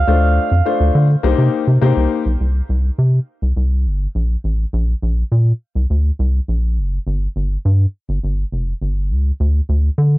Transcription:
0.00 1.50 F5 loud
0.07 0.39 D2 loud
0.07 0.48 A3 medium
0.07 0.48 D4 medium
0.07 0.49 F4 medium
0.07 0.49 C5 medium
0.51 0.62 F2 medium
0.65 1.07 A3 medium
0.65 1.07 D4 medium
0.65 1.07 F4 medium
0.65 1.07 C5 medium
0.80 0.91 D2 loud
0.95 1.16 D3 loud
1.23 1.34 C2 loud
1.23 1.65 A#3 loud
1.23 1.65 D#4 medium
1.23 1.65 G4 medium
1.23 1.65 C5 loud
1.38 1.49 C3 loud
1.68 1.78 C3 loud
1.82 1.93 C3 loud
1.82 2.23 A#3 medium
1.82 2.23 D#4 medium
1.82 2.23 G4 medium
1.82 2.23 C5 loud
1.97 2.07 C2 medium
2.26 2.36 B1 medium
2.41 2.62 C2 medium
2.70 2.91 C2 loud
2.99 3.20 C3 medium
3.42 3.53 C2 medium
3.57 3.87 C2 loud
3.86 4.07 G1 loud
4.15 4.36 A#1 medium
4.44 4.65 A1 medium
4.73 4.94 A#1 loud
5.03 5.24 A#1 loud
5.32 5.53 A#2 medium
5.75 5.86 C2 medium
5.90 6.11 D2 medium
6.19 6.40 C2 loud
6.48 6.79 A#1 medium
6.78 6.99 F#1 medium
7.07 7.28 G1 loud
7.36 7.57 G1 loud
7.65 7.86 G2 loud
8.09 8.19 G1 medium
8.23 8.44 G1 loud
8.52 8.73 F1 medium
8.81 9.12 G1 medium
9.11 9.32 C#2 medium
9.40 9.61 D2 loud
9.69 9.90 D2 medium
9.98 10.18 D3 loud

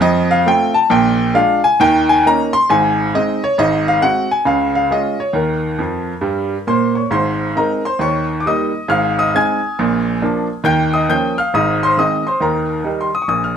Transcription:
0.01 0.39 F2 medium
0.01 0.39 F3 medium
0.01 0.30 D#5 loud
0.31 0.46 F5 loud
0.46 0.71 A3 medium
0.46 0.71 C4 soft
0.46 0.72 F4 medium
0.46 0.76 G5 loud
0.74 0.90 A5 medium
0.90 1.28 A#1 medium
0.90 1.28 A#2 loud
0.90 1.35 G5 loud
1.34 1.59 G#3 medium
1.34 1.59 D4 medium
1.34 1.59 F4 medium
1.34 1.64 F5 loud
1.64 1.80 G#5 loud
1.80 2.17 D#2 medium
1.80 2.18 D#3 loud
1.80 2.09 G5 loud
2.09 2.24 G#5 loud
2.26 2.50 A#3 medium
2.26 2.50 C#4 medium
2.26 2.50 D#4 medium
2.26 2.54 A#5 loud
2.53 2.68 C6 loud
2.70 3.07 G#1 medium
2.70 3.07 G#2 medium
2.70 3.13 G#5 loud
3.15 3.38 G#3 medium
3.15 3.39 C4 medium
3.15 3.38 D#4 medium
3.15 3.42 D#5 medium
3.44 3.58 C#5 loud
3.58 3.96 G#1 medium
3.58 3.95 G#2 medium
3.58 3.86 D#5 loud
3.88 4.02 F5 loud
4.01 4.26 G#3 soft
4.01 4.26 C4 medium
4.01 4.26 F#4 medium
4.01 4.30 F#5 loud
4.31 4.46 G#5 medium
4.45 4.83 C#2 medium
4.45 4.83 C#3 medium
4.45 4.74 F5 medium
4.75 4.90 F5 medium
4.91 5.15 G#3 soft
4.91 5.15 C#4 soft
4.91 5.15 F4 soft
4.91 5.20 D#5 medium
5.20 5.35 C#5 medium
5.33 5.71 D#2 medium
5.33 5.71 D#3 medium
5.33 6.67 A#4 medium
5.79 6.12 F2 medium
5.79 6.12 F3 medium
6.21 6.55 G2 medium
6.21 6.55 G3 medium
6.67 7.00 A#2 medium
6.67 7.00 A#3 medium
6.67 6.95 C5 medium
6.67 6.96 C6 medium
6.95 7.11 C#5 soft
6.95 7.11 C#6 medium
7.11 7.48 G#1 medium
7.11 7.49 G#2 medium
7.11 7.53 C5 medium
7.11 7.56 C6 medium
7.56 7.80 G#3 soft
7.56 7.81 C4 soft
7.56 7.81 D#4 medium
7.56 7.84 A#4 medium
7.56 7.85 A#5 medium
7.85 8.00 C5 medium
7.85 8.00 C6 medium
7.99 8.37 D#2 medium
7.99 8.37 D#3 medium
7.99 8.37 C#5 medium
7.99 8.40 C#6 medium
8.40 8.45 D6 medium
8.46 8.70 G3 medium
8.46 8.70 A#3 soft
8.46 8.71 D#4 medium
8.46 8.87 D#5 medium
8.46 8.90 D#6 medium
8.88 9.26 G#1 medium
8.88 9.26 G#2 medium
8.88 9.16 F5 medium
8.88 9.18 F6 loud
9.19 9.33 D#5 medium
9.19 9.34 D#6 loud
9.35 9.58 G#3 medium
9.35 9.58 C4 soft
9.35 9.59 D#4 medium
9.35 10.19 G#5 medium
9.35 10.23 G#6 loud
9.79 10.16 A#1 medium
9.79 10.16 A#2 medium
10.22 10.46 F3 medium
10.22 10.47 A#3 medium
10.22 10.46 D4 medium
10.64 11.02 D#2 medium
10.64 11.02 D#3 medium
10.64 10.92 G5 medium
10.64 10.94 G6 loud
10.94 11.09 D#5 medium
10.94 11.09 D#6 medium
11.09 11.33 F3 soft
11.09 11.33 A#3 medium
11.09 11.34 C#4 medium
11.09 11.37 G5 medium
11.09 11.38 G6 loud
11.38 11.53 F5 medium
11.38 11.54 F6 medium
11.54 11.91 G#1 medium
11.54 11.91 G#2 medium
11.54 11.81 D#5 medium
11.54 11.83 D#6 medium
11.83 11.98 C5 medium
11.83 11.98 C6 medium
11.97 12.22 D#3 soft
11.97 12.22 G#3 soft
11.97 12.22 C4 soft
11.97 12.25 D#5 medium
11.97 12.27 D#6 medium
12.27 12.42 C5 medium
12.27 12.42 C6 medium
12.40 12.79 D#2 medium
12.40 12.79 D#3 medium
12.40 12.97 A#4 medium
12.40 13.00 A#5 medium
12.84 13.09 D#3 soft
12.84 13.09 G3 soft
12.84 13.09 D#4 soft
13.01 13.15 C6 medium
13.15 13.22 D#6 medium
13.22 13.30 C#6 medium
13.28 13.57 A#1 medium
13.28 13.57 A#2 medium
13.28 13.44 D#6 medium
13.44 13.57 F6 medium

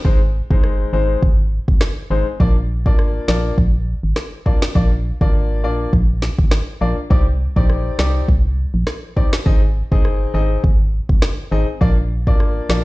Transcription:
0.05 0.42 G#1 loud
0.05 0.19 G#3 medium
0.05 0.19 C4 medium
0.05 0.19 D#4 medium
0.05 0.19 C5 medium
0.05 kick loud
0.50 0.85 G1 loud
0.50 0.90 G#3 medium
0.50 0.90 C4 medium
0.50 0.90 D#4 medium
0.50 0.90 C5 medium
0.50 kick medium
0.64 cross-stick medium
0.93 1.17 G#1 medium
0.93 1.20 G#3 medium
0.93 1.20 C4 medium
0.93 1.21 D#4 medium
0.93 1.21 C5 medium
1.23 1.59 G#1 loud
1.23 kick medium
1.68 1.92 G1 medium
1.68 kick medium
1.81 cross-stick medium
1.81 snare loud
2.10 2.24 G#1 medium
2.10 2.25 G#3 medium
2.10 2.25 C4 medium
2.10 2.25 D#4 medium
2.10 2.25 C5 medium
2.40 2.87 A#1 loud
2.40 2.54 A#3 medium
2.40 2.54 D4 medium
2.40 2.54 F4 medium
2.40 2.54 D5 loud
2.40 kick loud
2.86 3.20 G#1 medium
2.86 3.25 A#3 medium
2.86 3.25 D4 medium
2.86 3.25 F4 medium
2.86 3.25 D5 medium
2.86 kick medium
2.99 cross-stick medium
3.28 3.52 A#1 medium
3.28 3.55 A#3 medium
3.28 3.56 D4 medium
3.28 3.56 F4 medium
3.28 3.56 D5 medium
3.28 snare loud
3.58 3.95 A#1 loud
3.58 kick medium
4.03 4.14 G#1 medium
4.16 cross-stick medium
4.16 snare medium
4.46 4.60 A#3 medium
4.46 4.60 D4 medium
4.46 4.60 F4 medium
4.46 4.60 D5 medium
4.46 kick medium
4.62 snare loud
4.75 5.12 A#1 loud
4.75 4.89 A#3 medium
4.75 4.89 D4 medium
4.75 4.89 F4 medium
4.75 4.90 D5 loud
4.75 kick loud
5.21 5.65 G#1 loud
5.21 5.60 A#3 medium
5.21 5.60 D4 medium
5.21 5.61 F4 medium
5.21 5.61 D5 medium
5.21 kick medium
5.63 5.87 A#1 medium
5.63 5.91 A#3 medium
5.63 5.91 D4 medium
5.63 5.91 F4 medium
5.63 5.91 D5 medium
5.93 6.30 A#1 loud
5.93 kick medium
6.22 snare medium
6.39 6.62 G#1 medium
6.39 kick medium
6.51 cross-stick medium
6.51 snare loud
6.81 6.94 A#1 medium
6.81 6.95 A#3 medium
6.81 6.95 D4 medium
6.81 6.95 F4 medium
6.81 6.95 D5 medium
7.10 7.48 C2 loud
7.10 7.24 C4 medium
7.10 7.25 D#4 medium
7.10 7.25 G4 medium
7.10 7.25 D5 loud
7.10 kick loud
7.56 7.91 A#1 medium
7.56 7.96 C4 medium
7.56 7.96 D#4 medium
7.56 7.96 G4 medium
7.56 7.96 D5 medium
7.56 kick medium
7.70 cross-stick medium
7.99 8.22 C2 medium
7.99 8.26 C4 medium
7.99 8.26 D#4 medium
7.99 8.26 G4 medium
7.99 8.26 D5 medium
7.99 snare loud
8.28 8.65 C2 loud
8.28 kick medium
8.74 8.84 A#1 medium
8.87 cross-stick medium
8.87 snare medium
9.16 9.30 C4 medium
9.16 9.31 D#4 medium
9.16 9.31 G4 medium
9.16 9.31 D5 medium
9.16 kick medium
9.33 snare loud
9.46 9.83 G#1 loud
9.46 9.60 C4 medium
9.46 9.60 D#4 medium
9.46 9.60 G#4 medium
9.46 9.60 D#5 medium
9.46 kick loud
9.92 10.26 G1 loud
9.92 10.31 C4 medium
9.92 10.31 D#4 medium
9.92 10.31 G#4 medium
9.92 10.31 D#5 medium
9.92 kick medium
10.05 cross-stick medium
10.34 10.58 G#1 loud
10.34 10.61 C4 medium
10.34 10.61 D#4 medium
10.34 10.62 G#4 medium
10.34 10.62 D#5 medium
10.64 11.01 G#1 loud
10.64 kick medium
11.09 11.33 G1 medium
11.09 kick medium
11.22 cross-stick medium
11.22 snare loud
11.51 11.65 G#1 loud
11.51 11.66 C4 medium
11.51 11.66 D#4 medium
11.51 11.66 G#4 medium
11.51 11.66 D#5 medium
11.81 12.29 A#1 loud
11.81 11.95 A#3 medium
11.81 11.95 D4 medium
11.81 11.95 F4 medium
11.81 11.95 D5 loud
11.81 kick loud
12.27 12.61 G#1 medium
12.27 12.66 A#3 medium
12.27 12.66 D4 medium
12.27 12.67 F4 medium
12.27 12.67 D5 medium
12.27 kick medium
12.40 cross-stick medium
12.69 12.84 A#1 medium
12.69 12.84 A#3 medium
12.69 12.84 D4 medium
12.69 12.84 F4 medium
12.69 12.84 D5 medium
12.69 snare loud

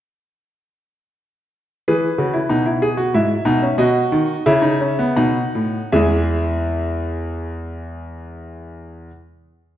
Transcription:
1.88 2.08 E3 medium
1.88 2.07 G#4 medium
1.88 3.09 B4 medium
2.18 2.38 C#3 medium
2.18 2.34 F#4 soft
2.33 2.49 E4 medium
2.49 3.11 B2 medium
2.49 2.65 D#4 medium
2.66 2.81 E4 medium
2.82 2.97 G#4 medium
2.97 3.13 F#4 medium
3.14 3.34 G#2 medium
3.14 3.34 E4 medium
3.14 3.77 E5 medium
3.45 3.65 B2 medium
3.45 3.61 D#4 medium
3.62 3.78 C#4 medium
3.78 3.99 B2 medium
3.78 4.43 F#4 medium
3.78 4.43 D#5 medium
4.12 4.33 D#3 medium
4.46 5.14 C#3 medium
4.46 4.62 E4 medium
4.46 5.14 E5 medium
4.62 4.79 D#4 medium
4.80 4.97 C#4 medium
4.99 5.16 B3 medium
5.16 5.39 B2 medium
5.16 5.89 D#4 medium
5.16 5.89 F#5 medium
5.55 5.78 A2 medium
5.92 9.07 E2 medium
5.92 9.10 E3 medium
5.92 9.10 G#3 medium
5.92 9.07 G#4 medium
5.92 9.07 E5 medium

